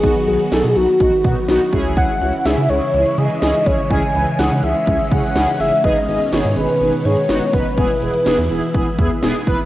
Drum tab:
HH |xxxxxxxxxxxxxxox|xxxxxxxxxxxxxxox|xxxxxxxxxxxxxxox|xxxxxxxxxxxxxxox|
SD |----o-------o---|----o-------o---|----o-------o---|----o-------o---|
BD |o-------o-o---o-|o-------------o-|o-------o-o-----|o-------------o-|

HH |xxxxxxxxxxxxxxox|
SD |----o-------o---|
BD |o-------o-o---o-|